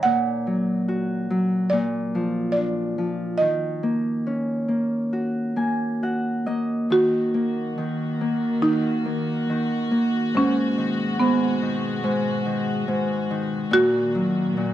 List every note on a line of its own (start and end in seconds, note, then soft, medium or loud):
0.00 1.91 D#4 medium
0.00 0.70 C#5 medium
0.00 0.78 D#5 medium
0.00 0.82 F#5 medium
0.00 1.75 F#5 loud
0.00 0.92 G#5 medium
0.00 1.03 A#5 medium
0.05 1.71 A#2 medium
0.47 1.29 F#3 soft
0.88 2.21 F#4 medium
1.30 1.76 F#3 medium
1.70 3.43 A#2 medium
1.70 2.51 D5 medium
2.15 2.97 F3 soft
2.52 3.40 D5 medium
2.57 3.47 D4 soft
2.98 3.43 F3 soft
3.38 6.89 D#3 medium
3.38 5.96 D#5 medium
3.83 4.68 A#3 soft
4.27 7.16 C#4 medium
4.68 5.56 A#3 soft
5.13 6.02 F#4 medium
5.56 6.47 A#3 soft
5.56 7.07 G#5 medium
6.03 8.46 F#4 soft
6.03 7.64 F#5 medium
6.46 7.34 A#3 soft
6.46 8.25 D#5 medium
6.90 7.76 D#3 medium
6.90 10.32 D#3 medium
6.90 10.32 A#3 medium
6.90 14.74 F#4 medium
6.90 8.68 F#4 medium
7.34 8.21 A#3 soft
7.78 8.62 D#3 soft
8.21 9.05 A#3 soft
8.62 9.48 D#3 medium
8.62 10.40 D#4 medium
9.05 9.91 A#3 soft
9.49 10.39 D#3 soft
9.91 13.13 A#3 soft
10.34 11.19 G#2 medium
10.34 13.69 B2 medium
10.34 13.69 G#3 medium
10.34 11.24 C#4 medium
10.77 11.61 D#3 soft
11.20 12.03 G#2 medium
11.20 13.25 B3 medium
11.62 12.44 D#3 soft
12.04 12.87 G#2 medium
12.46 13.29 D#3 soft
12.88 13.77 G#2 medium
13.30 13.77 D#3 soft
13.71 14.56 A#2 medium
13.71 14.74 A#2 medium
13.71 14.74 D#3 medium
13.71 14.74 A#3 medium
13.71 14.74 F#4 loud
14.15 14.74 F#3 medium
14.57 14.74 A#2 medium